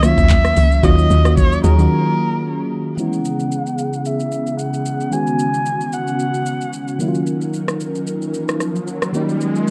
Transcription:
0.00 0.13 C#2 medium
0.00 0.03 D#3 loud
0.00 2.94 D#3 medium
0.00 0.68 D#3 medium
0.00 0.03 F#3 medium
0.00 2.94 F#3 medium
0.00 0.69 F#3 medium
0.00 0.04 A#3 medium
0.00 2.94 A#3 medium
0.00 0.69 A#3 medium
0.00 0.04 C#4 medium
0.00 2.94 C#4 medium
0.00 0.05 F4 loud
0.00 cross-stick medium
0.00 high conga medium
0.00 shaker loud
0.04 0.69 C#4 medium
0.04 0.69 F4 medium
0.04 0.86 E5 loud
0.18 0.53 D#2 medium
0.18 kick medium
0.18 shaker medium
0.29 kick loud
0.29 clap medium
0.29 high conga medium
0.29 shaker medium
0.45 cross-stick loud
0.45 shaker medium
0.57 0.81 C#2 medium
0.57 open hi-hat medium
0.57 high conga medium
0.57 low conga medium
0.57 shaker medium
0.72 shaker soft
0.83 1.07 D#2 loud
0.83 1.16 D#3 loud
0.83 1.16 F#3 medium
0.83 1.16 A#3 medium
0.83 1.17 C#4 medium
0.83 1.17 F4 loud
0.83 1.33 F#4 medium
0.83 1.33 C#5 medium
0.83 1.33 D#5 loud
0.83 1.38 D#5 loud
0.83 kick loud
0.83 shaker medium
0.98 shaker soft
1.10 1.58 D#2 loud
1.10 high conga medium
1.10 shaker medium
1.25 1.57 D#3 medium
1.25 1.57 F#3 medium
1.25 1.57 A#3 medium
1.25 1.57 C#4 medium
1.25 1.57 F#4 medium
1.25 cross-stick loud
1.25 shaker medium
1.37 1.63 C#5 loud
1.37 kick loud
1.37 low conga medium
1.37 shaker medium
1.52 shaker soft
1.64 1.88 D#2 loud
1.64 1.76 D#3 medium
1.64 1.76 F#3 medium
1.64 1.76 A#3 medium
1.64 1.76 C#4 medium
1.64 1.76 F#4 medium
1.64 1.76 G#4 medium
1.64 2.67 A#4 medium
1.64 1.76 C#5 medium
1.64 1.76 D#5 medium
1.64 high conga medium
1.64 low conga medium
1.64 shaker medium
1.78 2.64 D#3 medium
1.78 2.64 F#3 medium
1.78 2.64 A#3 medium
1.78 2.64 C#4 medium
1.78 2.65 F#4 medium
1.78 shaker medium
2.97 6.96 C#3 medium
2.97 5.08 E3 medium
2.97 5.08 G#3 medium
2.97 6.96 B3 medium
2.97 5.09 B3 medium
2.97 9.70 C#4 medium
2.97 5.09 C#4 medium
2.97 5.09 E4 medium
2.97 5.10 G#4 medium
2.97 4.07 F#5 medium
2.97 shaker medium
3.13 shaker soft
3.25 shaker medium
3.40 shaker medium
3.52 shaker medium
3.66 shaker soft
3.78 shaker medium
3.93 shaker soft
4.05 4.59 E5 medium
4.05 shaker medium
4.20 shaker medium
4.32 shaker medium
4.47 shaker soft
4.59 5.14 F#5 medium
4.59 shaker medium
4.74 shaker medium
4.86 shaker medium
5.00 shaker soft
5.11 6.95 D#3 medium
5.11 6.96 G#3 medium
5.11 6.96 B3 medium
5.11 6.97 C#4 medium
5.11 6.98 F#4 medium
5.11 6.97 F#4 medium
5.11 5.95 G#5 loud
5.11 shaker medium
5.27 shaker soft
5.39 shaker medium
5.54 shaker medium
5.66 shaker medium
5.81 shaker soft
5.93 7.00 F#5 loud
5.93 shaker medium
6.07 shaker soft
6.19 shaker medium
6.34 shaker medium
6.46 shaker medium
6.61 shaker soft
6.73 shaker medium
6.88 shaker medium
6.99 9.09 D#3 medium
6.99 9.10 F#3 medium
6.99 9.70 F#3 medium
6.99 9.10 A#3 medium
6.99 9.11 C#4 medium
6.99 9.12 D#4 medium
6.99 7.08 E4 medium
6.99 9.70 A#4 medium
6.99 shaker medium
7.08 9.14 F4 medium
7.15 shaker soft
7.27 riser medium
7.27 shaker medium
7.41 shaker soft
7.53 shaker medium
7.68 cross-stick loud
7.68 shaker medium
7.80 shaker medium
7.95 shaker soft
8.07 shaker medium
8.22 shaker soft
8.34 shaker medium
8.48 cross-stick loud
8.48 shaker medium
8.60 cross-stick medium
8.60 shaker medium
8.76 shaker soft
8.87 shaker medium
9.02 cross-stick loud
9.02 shaker medium
9.13 9.70 D#3 medium
9.13 9.70 F#3 medium
9.13 9.70 A#3 medium
9.13 9.70 C#4 medium
9.13 9.70 D#4 medium
9.13 9.70 F4 medium
9.13 shaker medium
9.29 shaker soft
9.41 shaker medium
9.55 shaker soft

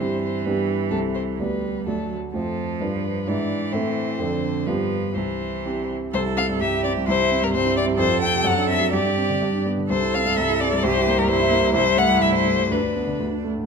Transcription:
0.00 0.44 G2 soft
0.00 1.41 E3 soft
0.00 0.41 C4 soft
0.00 0.41 E4 soft
0.00 0.42 G4 soft
0.00 0.21 C5 soft
0.22 0.47 C5 soft
0.45 0.90 G2 soft
0.45 0.87 B3 soft
0.45 0.87 D4 soft
0.45 0.88 G4 soft
0.45 0.90 B4 soft
0.90 1.37 C2 soft
0.90 1.34 C4 soft
0.90 1.35 E4 soft
0.90 0.98 A4 soft
0.90 1.35 A4 soft
1.15 1.23 C5 soft
1.38 1.85 D2 soft
1.38 1.88 G3 soft
1.38 1.83 B3 soft
1.38 1.83 G4 soft
1.38 1.85 B4 soft
1.38 1.83 D5 soft
1.86 2.33 D2 soft
1.86 2.14 F#3 soft
1.86 2.30 A3 soft
1.86 2.30 F#4 soft
1.86 2.14 A4 soft
1.86 2.31 D5 soft
2.34 2.79 F2 soft
2.34 3.30 F3 soft
2.34 2.77 A3 soft
2.34 2.77 F4 soft
2.34 2.83 A4 soft
2.34 2.77 C5 soft
2.80 3.26 G2 soft
2.80 3.23 D4 soft
2.80 3.24 F4 soft
2.80 3.29 B4 soft
2.80 3.24 B4 soft
3.27 3.72 G#2 soft
3.27 4.21 E3 soft
3.27 3.69 D4 soft
3.27 3.69 E4 soft
3.27 3.69 B4 soft
3.27 3.74 D5 soft
3.73 4.18 A2 soft
3.73 4.15 C4 soft
3.73 4.16 E4 soft
3.73 4.16 A4 soft
3.73 4.68 C5 medium
4.19 4.65 F2 medium
4.19 4.68 D3 soft
4.19 4.62 C4 soft
4.19 4.63 D4 soft
4.19 4.63 A4 soft
4.66 5.14 G2 soft
4.66 5.15 F3 soft
4.66 5.11 B3 soft
4.66 5.11 F4 soft
4.66 5.12 G4 soft
4.66 5.16 B4 soft
5.15 5.63 C2 soft
5.15 5.91 E3 soft
5.15 5.92 C5 soft
5.65 6.10 C4 soft
5.65 6.10 E4 soft
5.65 6.10 G4 soft
6.13 6.59 C2 medium
6.13 6.62 A4 medium
6.13 6.22 C5 medium
6.26 6.44 E4 soft
6.37 6.56 C4 soft
6.37 6.45 F5 medium
6.49 6.68 G2 soft
6.61 7.07 C2 soft
6.61 7.09 G4 medium
6.61 6.83 E5 medium
6.73 6.91 E4 soft
6.84 7.03 C4 soft
6.84 6.92 D5 medium
6.97 7.08 G2 soft
7.08 7.52 C2 medium
7.08 7.53 E4 medium
7.08 7.45 C5 medium
7.20 7.38 E4 soft
7.31 7.49 C4 soft
7.43 7.61 G2 soft
7.43 7.53 A#4 medium
7.53 7.98 C2 medium
7.53 7.98 C4 medium
7.53 7.76 C5 medium
7.65 7.83 E4 soft
7.76 7.94 C4 soft
7.76 7.85 D5 medium
7.87 7.98 G2 soft
7.98 8.43 F2 medium
7.98 8.94 A4 medium
7.98 8.21 C5 medium
8.09 8.28 F4 soft
8.21 8.40 C4 soft
8.21 8.47 G5 medium
8.32 8.45 C3 soft
8.44 8.91 F#2 medium
8.44 8.69 F#5 medium
8.56 8.76 D4 soft
8.68 8.88 C4 soft
8.68 8.93 E5 medium
8.80 8.93 F#3 soft
8.92 9.40 G2 medium
8.92 9.66 G4 medium
8.92 9.65 D5 medium
9.05 9.24 D4 soft
9.17 9.37 C4 soft
9.29 9.42 D3 soft
9.42 9.89 G2 medium
9.53 9.73 D4 soft
9.66 9.85 B3 soft
9.78 9.90 D3 soft
9.90 10.36 C2 medium
9.90 10.85 A4 medium
9.90 10.16 C5 medium
10.02 10.21 E4 soft
10.14 10.33 C4 soft
10.14 10.39 F5 medium
10.25 10.44 G2 soft
10.37 10.82 C2 medium
10.37 10.62 E5 medium
10.49 10.67 E4 soft
10.61 10.79 C4 soft
10.61 10.85 D5 medium
10.73 10.84 G2 soft
10.83 11.27 C2 medium
10.83 11.29 G4 medium
10.83 11.20 C5 medium
10.96 11.14 E4 soft
11.07 11.24 A#3 medium
11.18 11.35 G2 medium
11.18 11.30 A#4 medium
11.28 11.72 C2 medium
11.28 11.74 E4 medium
11.28 11.73 C5 medium
11.39 11.58 E4 medium
11.50 11.69 A#3 medium
11.62 11.74 G2 soft
11.74 12.19 C2 medium
11.74 12.69 E4 medium
11.74 12.00 C5 loud
11.85 12.04 E4 medium
11.97 12.16 A3 soft
11.97 12.23 F#5 medium
12.09 12.28 G2 soft
12.20 12.69 C2 soft
12.20 12.34 E5 medium
12.32 12.53 E4 soft
12.32 12.73 C5 medium
12.45 12.65 A3 soft
12.58 12.70 G2 soft
12.70 13.18 D2 soft
12.70 13.44 D4 soft
12.70 13.21 B4 medium
12.82 13.02 D4 soft
12.95 13.15 B3 soft
13.07 13.20 D3 soft
13.19 13.66 D2 soft
13.32 13.52 D4 soft
13.44 13.64 A3 soft
13.58 13.66 A2 soft

